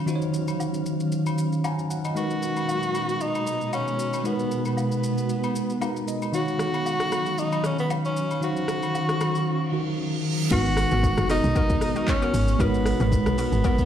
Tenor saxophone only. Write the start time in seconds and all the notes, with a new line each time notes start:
2.17 F#4
3.22 D#4
3.74 C#4
4.26 B3
4.67 B3
6.35 F#4
7.39 D#4
7.66 C#4
7.80 B3
8.06 C#4
8.44 F#4
10.52 F#4
11.31 D#4
12.09 C#4
12.61 B3
13.02 B3